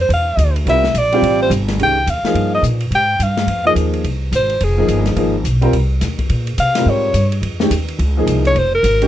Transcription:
0.01 0.10 C5 medium
0.09 0.37 E2 medium
0.09 ride medium
0.14 0.54 F5 medium
0.37 0.65 D2 loud
0.37 hi-hat pedal medium
0.37 ride medium
0.56 ride medium
0.66 0.93 C2 medium
0.66 0.82 G3 medium
0.66 0.82 C4 medium
0.66 0.83 F4 medium
0.66 0.83 A#4 medium
0.66 1.00 E5 loud
0.66 ride medium
0.84 snare soft
0.94 1.21 A#1 medium
0.94 hi-hat pedal medium
0.94 ride medium
0.98 1.42 D5 medium
1.12 1.49 G3 medium
1.12 1.50 C4 medium
1.12 1.50 F4 medium
1.12 1.50 G4 loud
1.12 ride soft
1.22 1.49 A1 loud
1.22 ride medium
1.42 1.52 C5 loud
1.50 1.78 G1 loud
1.50 hi-hat pedal medium
1.50 ride medium
1.68 snare soft
1.68 ride medium
1.78 2.06 C2 medium
1.78 1.95 D#3 medium
1.78 1.95 G#3 medium
1.78 1.95 C#4 medium
1.78 1.96 G4 medium
1.78 ride medium
1.83 2.12 G5 loud
2.07 2.23 D#2 medium
2.07 2.54 F5 medium
2.07 hi-hat pedal medium
2.07 ride medium
2.23 2.61 F3 medium
2.23 2.62 A#3 medium
2.23 2.62 D#4 medium
2.23 2.62 G#4 medium
2.23 muted upright bass stroke soft
2.23 snare soft
2.23 ride soft
2.34 2.62 G2 medium
2.34 ride medium
2.55 2.64 D#5 medium
2.62 2.90 A#2 medium
2.62 hi-hat pedal medium
2.62 ride medium
2.80 ride soft
2.91 3.19 G#2 medium
2.91 ride medium
2.95 3.25 G5 loud
3.19 3.46 G2 medium
3.19 3.66 F5 medium
3.19 hi-hat pedal medium
3.19 ride medium
3.37 snare medium
3.37 ride soft
3.47 3.75 F2 medium
3.47 ride medium
3.65 4.02 F3 medium
3.65 4.03 A#3 medium
3.65 4.03 D#4 medium
3.65 4.03 G#4 medium
3.65 3.73 D#5 loud
3.75 4.03 D#2 medium
3.75 hi-hat pedal medium
3.75 ride medium
3.94 ride soft
4.04 4.31 C2 medium
4.04 ride medium
4.32 4.60 G#1 medium
4.32 hi-hat pedal medium
4.32 ride medium
4.36 4.66 C5 medium
4.49 ride soft
4.60 4.87 F1 medium
4.60 5.08 G#4 medium
4.60 ride medium
4.78 5.15 F3 medium
4.78 5.15 A#3 medium
4.78 5.16 D#4 medium
4.78 5.16 G#4 medium
4.88 5.15 G1 medium
4.88 hi-hat pedal medium
4.88 ride medium
5.06 snare soft
5.06 ride soft
5.16 5.43 G#1 medium
5.16 5.33 F3 medium
5.16 5.33 A#3 medium
5.16 5.33 D#4 medium
5.16 5.33 G#4 medium
5.16 ride medium
5.44 5.72 B1 medium
5.44 hi-hat pedal medium
5.44 ride medium
5.61 5.72 G3 medium
5.61 5.72 C4 medium
5.61 5.73 F4 medium
5.61 5.73 A#4 medium
5.61 ride soft
5.73 6.00 C2 medium
5.73 ride medium
6.01 6.29 D#2 medium
6.01 snare soft
6.01 hi-hat pedal soft
6.01 ride medium
6.19 kick medium
6.19 ride medium
6.29 6.57 A#2 medium
6.29 ride medium
6.47 ride medium
6.58 6.85 C3 medium
6.58 6.91 F5 loud
6.58 hi-hat pedal medium
6.58 ride medium
6.75 7.12 G3 medium
6.75 7.13 C4 medium
6.75 7.13 F4 medium
6.75 7.13 A#4 medium
6.75 snare medium
6.75 ride medium
6.86 7.13 G#2 medium
6.86 7.33 C#5 medium
7.14 7.41 G2 loud
7.14 hi-hat pedal medium
7.14 ride medium
7.32 ride medium
7.42 7.70 F2 medium
7.42 ride medium
7.60 7.70 D#3 medium
7.60 7.70 G#3 medium
7.60 7.71 C#4 medium
7.60 7.71 G4 medium
7.60 snare medium
7.70 7.98 D#2 medium
7.70 hi-hat pedal medium
7.70 ride medium
7.88 ride medium
7.99 8.26 C#2 medium
7.99 ride medium
8.17 8.54 F3 medium
8.17 8.54 A#3 medium
8.17 8.54 D#4 medium
8.17 8.55 G#4 medium
8.27 8.54 C2 loud
8.27 hi-hat pedal medium
8.27 ride medium
8.45 8.60 C#5 loud
8.45 ride medium
8.55 8.83 F1 medium
8.55 8.74 C5 medium
8.55 ride medium
8.75 9.07 A#4 loud
8.83 9.07 G#1 medium
8.83 hi-hat pedal medium
8.83 ride medium
9.01 9.07 D#3 medium
9.01 9.07 G#3 medium
9.01 9.07 C#4 medium
9.01 9.07 G4 medium
9.01 ride medium

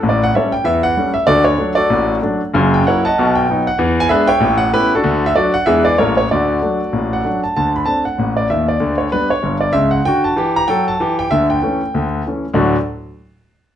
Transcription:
0.03 0.30 A1 medium
0.03 0.30 A2 medium
0.09 0.22 D5 medium
0.24 0.33 F#5 medium
0.35 0.52 G3 medium
0.35 0.53 A3 soft
0.35 0.53 C#4 medium
0.35 0.53 A4 medium
0.35 0.53 C#5 medium
0.35 0.51 E5 medium
0.52 0.64 G5 medium
0.64 0.92 E2 medium
0.64 0.92 E3 medium
0.64 0.81 E5 loud
0.83 1.11 F#5 medium
0.97 1.14 G3 medium
0.97 1.15 A3 soft
0.97 1.15 C#4 medium
1.14 1.26 E5 medium
1.27 1.54 D2 medium
1.27 1.55 D3 medium
1.27 1.46 F#4 medium
1.27 1.45 A4 medium
1.27 1.43 D5 loud
1.44 1.72 C#5 medium
1.58 1.76 F#3 soft
1.58 1.76 A3 medium
1.58 1.77 D4 medium
1.75 2.19 F#4 medium
1.75 2.19 A4 medium
1.75 2.14 D5 medium
1.90 2.17 A1 medium
1.90 2.17 A2 medium
2.22 2.40 F#3 soft
2.22 2.40 A3 medium
2.22 2.40 D4 medium
2.54 2.80 F#1 medium
2.54 2.81 F#2 loud
2.74 2.83 G5 medium
2.87 3.04 F#3 medium
2.87 3.05 A#3 soft
2.87 3.05 E4 medium
2.87 3.04 A#4 medium
2.87 3.04 C#5 medium
2.87 3.02 F#5 medium
3.05 3.34 D#5 medium
3.05 3.34 F#5 medium
3.05 3.31 A5 medium
3.18 3.44 B1 medium
3.18 3.45 B2 loud
3.35 3.62 G5 medium
3.49 3.66 F#3 soft
3.49 3.67 B3 medium
3.49 3.68 D#4 medium
3.67 3.78 F#5 medium
3.78 4.06 E2 medium
3.78 4.06 E3 medium
4.00 4.09 G#5 loud
4.09 4.27 G#3 medium
4.09 4.28 B3 medium
4.09 4.28 D4 medium
4.09 4.28 G#4 medium
4.09 4.28 B4 medium
4.09 4.26 E5 loud
4.27 4.58 C#5 medium
4.27 4.58 E5 medium
4.27 4.55 G5 loud
4.40 4.68 A1 medium
4.40 4.68 A2 medium
4.58 4.70 F#5 loud
4.73 4.90 A3 medium
4.73 4.91 B3 medium
4.73 4.91 C#4 medium
4.73 4.93 E4 medium
4.73 4.93 G4 medium
4.73 4.91 B4 loud
4.95 5.24 D4 medium
4.95 5.24 F#4 medium
4.95 5.21 A4 medium
5.04 5.31 D2 medium
5.04 5.31 D3 loud
5.26 5.35 E5 loud
5.35 5.53 F#3 medium
5.35 5.54 D4 medium
5.35 5.54 F#4 medium
5.35 5.53 A4 medium
5.35 5.52 D5 medium
5.54 5.65 F#5 medium
5.66 5.94 E2 medium
5.66 5.94 E3 medium
5.66 5.84 G#3 medium
5.66 5.85 B3 medium
5.66 5.85 D4 soft
5.66 5.84 G#4 medium
5.66 5.85 B4 medium
5.66 5.82 E5 loud
5.85 5.96 D5 medium
5.98 6.25 A1 medium
5.98 6.25 A2 medium
5.98 6.16 G3 soft
5.98 6.16 A#3 soft
5.98 6.16 E4 soft
5.98 6.16 A4 medium
5.98 6.17 A#4 medium
5.98 6.14 C#5 medium
6.17 6.28 C#5 medium
6.31 6.58 D2 medium
6.31 6.57 D3 medium
6.31 7.40 F#4 medium
6.31 7.40 A4 medium
6.31 7.26 D5 medium
6.62 6.79 F#3 soft
6.62 6.79 A3 soft
6.62 6.79 D4 soft
6.93 7.19 A1 medium
6.93 7.19 A2 medium
7.13 7.39 F#5 medium
7.25 7.42 F#3 soft
7.25 7.42 A3 soft
7.25 7.42 D4 medium
7.44 7.54 A5 medium
7.56 7.83 D2 medium
7.56 7.83 D3 medium
7.56 7.72 A5 medium
7.76 7.86 B5 medium
7.86 8.04 A3 soft
7.86 8.04 C4 soft
7.86 8.05 D4 soft
7.86 8.02 A5 medium
8.05 8.32 F#5 medium
8.18 8.45 A1 medium
8.18 8.45 A2 medium
8.37 8.47 D5 medium
8.50 8.75 D#2 medium
8.50 8.75 D#3 medium
8.50 8.65 E5 medium
8.68 8.95 D5 medium
8.80 9.07 D2 medium
8.80 9.07 D3 medium
8.98 9.09 C#5 medium
9.12 9.30 G3 soft
9.12 9.30 B3 soft
9.12 9.30 D4 soft
9.12 9.28 B4 medium
9.30 9.57 C#5 medium
9.43 9.69 G1 medium
9.43 9.70 G2 medium
9.61 9.72 D5 medium
9.73 9.98 C#2 medium
9.73 9.99 C#3 medium
9.73 9.89 E5 medium
9.91 10.03 F#5 medium
10.05 10.31 D3 medium
10.05 10.32 F#4 medium
10.05 10.21 G5 loud
10.24 10.51 A5 medium
10.36 10.62 E3 medium
10.36 10.63 G4 medium
10.56 10.67 A#5 loud
10.68 10.93 F#3 medium
10.68 10.94 A4 medium
10.68 10.84 G5 loud
10.88 11.14 A5 medium
11.00 11.25 E3 medium
11.00 11.26 G4 medium
11.19 11.29 G5 medium
11.31 11.58 D2 medium
11.31 11.58 D3 medium
11.31 11.47 E5 loud
11.50 12.03 G5 medium
11.62 11.80 E3 medium
11.62 11.80 A3 medium
11.62 11.81 C#4 medium
11.94 12.21 D2 medium
11.94 12.21 D3 medium
12.27 12.44 E3 soft
12.27 12.44 A3 soft
12.27 12.44 C#4 soft
12.54 12.75 D2 medium
12.54 12.75 A2 medium
12.54 12.75 F#3 medium
12.54 12.75 A3 medium
12.54 12.75 D4 medium
12.54 12.75 F#4 medium
12.54 12.75 D5 medium

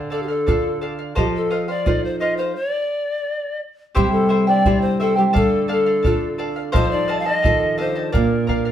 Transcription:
0.00 1.13 D3 medium
0.00 0.11 D5 medium
0.00 0.11 F5 medium
0.10 0.29 A4 medium
0.10 0.24 A4 medium
0.10 0.29 D5 medium
0.10 0.27 F5 medium
0.23 0.30 G4 medium
0.28 0.83 A4 medium
0.28 0.46 D5 soft
0.28 0.47 F5 soft
0.46 1.15 D4 soft
0.46 1.15 F4 soft
0.46 0.80 A4 soft
0.46 1.16 A4 soft
0.46 0.81 D5 medium
0.46 0.81 F5 medium
0.46 bombo low medium
0.81 0.99 A4 soft
0.81 0.98 D5 soft
0.81 0.97 F5 soft
0.99 1.15 D5 soft
0.99 1.15 F5 soft
1.15 2.53 F3 medium
1.15 1.49 F4 medium
1.15 1.24 G4 medium
1.15 1.51 A4 medium
1.15 1.50 C5 medium
1.15 1.49 D#5 medium
1.15 1.50 F5 medium
1.15 bombo low medium
1.36 1.71 A4 medium
1.50 1.69 F4 medium
1.50 1.67 C5 medium
1.50 1.68 D#5 medium
1.50 1.67 F5 medium
1.68 1.85 F4 soft
1.68 1.85 C5 soft
1.68 2.06 D5 medium
1.68 1.86 F5 soft
1.86 2.54 D#4 soft
1.86 2.20 F4 medium
1.86 2.54 F4 soft
1.86 2.54 A4 soft
1.86 2.20 C5 medium
1.86 2.19 D#5 soft
1.86 2.21 F5 medium
1.86 bombo low medium
2.04 2.19 C5 medium
2.19 2.39 F4 soft
2.19 2.38 C5 medium
2.19 2.36 D#5 medium
2.19 2.38 D#5 soft
2.19 2.38 F5 medium
2.37 2.57 F4 soft
2.37 2.57 C5 medium
2.37 2.56 C5 soft
2.37 2.56 F5 soft
2.55 3.60 D5 medium
3.95 5.32 C3 medium
3.95 5.17 G3 medium
3.95 4.28 E4 medium
3.95 4.30 G4 medium
3.95 4.11 G4 medium
3.95 4.29 C5 medium
3.95 4.28 E5 medium
3.95 4.29 G5 medium
3.95 bombo low medium
4.12 5.00 A3 medium
4.12 4.45 A4 medium
4.29 4.47 E4 medium
4.29 4.46 C5 medium
4.29 4.47 E5 medium
4.29 4.46 G5 medium
4.47 6.80 D4 medium
4.47 4.65 E4 soft
4.47 4.65 C5 soft
4.47 4.80 D5 medium
4.47 4.65 G5 medium
4.65 5.33 C4 medium
4.65 4.99 E4 medium
4.65 5.33 E4 soft
4.65 5.34 G4 medium
4.65 4.99 C5 medium
4.65 4.98 E5 medium
4.65 5.00 G5 medium
4.65 bombo low medium
4.81 7.83 C4 medium
4.81 4.98 C5 medium
5.00 5.35 A3 medium
5.00 5.16 E4 soft
5.00 5.17 A4 medium
5.00 5.15 C5 medium
5.00 5.17 E5 medium
5.00 5.14 G5 medium
5.16 5.24 G3 medium
5.16 5.32 E4 soft
5.16 5.23 G4 medium
5.16 5.33 C5 soft
5.16 5.33 G5 soft
5.33 6.71 D3 medium
5.33 5.71 A3 medium
5.33 5.67 A4 medium
5.33 5.68 A4 medium
5.33 5.67 D5 medium
5.33 5.68 F5 medium
5.33 bombo low medium
5.68 8.72 A3 medium
5.68 5.86 A4 medium
5.68 6.37 A4 medium
5.68 5.86 D5 medium
5.68 5.85 F5 medium
5.86 6.03 D5 soft
5.86 6.03 F5 medium
6.03 6.73 D4 soft
6.03 6.73 F4 soft
6.03 6.37 A4 medium
6.03 6.38 D5 medium
6.03 6.38 F5 medium
6.03 bombo low medium
6.07 6.74 A4 medium
6.38 6.56 A4 medium
6.38 6.56 D5 medium
6.38 6.55 F5 medium
6.56 6.72 D5 soft
6.56 6.71 F5 soft
6.72 8.11 F3 medium
6.72 6.93 D#4 medium
6.72 7.07 A4 medium
6.72 7.08 C5 medium
6.72 6.90 C5 medium
6.72 7.08 D#5 medium
6.72 7.07 F5 medium
6.72 7.08 A5 medium
6.72 bombo low medium
6.91 7.85 D#4 medium
6.91 7.21 D5 medium
7.08 7.25 A4 medium
7.08 7.25 D#5 medium
7.08 7.26 F5 medium
7.08 7.24 A5 medium
7.20 8.72 G4 medium
7.20 7.29 F5 medium
7.25 8.72 F4 medium
7.25 7.42 A4 soft
7.25 7.42 D#5 soft
7.25 7.79 D#5 loud
7.25 7.43 A5 medium
7.42 8.12 D#3 soft
7.42 8.12 F4 soft
7.42 7.76 A4 medium
7.42 8.13 A4 medium
7.42 7.77 D#5 medium
7.42 7.77 F5 medium
7.42 7.77 A5 medium
7.42 bombo low medium
7.78 8.15 D4 medium
7.78 7.95 A4 medium
7.78 8.12 C5 medium
7.78 7.95 D#5 medium
7.78 7.96 F5 medium
7.78 7.94 A5 medium
7.96 8.12 A4 soft
7.96 8.12 D#5 soft
7.96 8.13 A5 soft
8.12 8.72 A#2 medium
8.12 8.72 D4 medium
8.12 8.46 A#4 medium
8.12 8.72 A#4 medium
8.12 8.47 D5 medium
8.12 8.48 F5 medium
8.12 bombo low medium
8.47 8.65 A#4 medium
8.47 8.65 D5 medium
8.47 8.64 F5 medium
8.47 bombo low soft
8.65 8.72 D5 soft
8.65 8.72 F5 medium

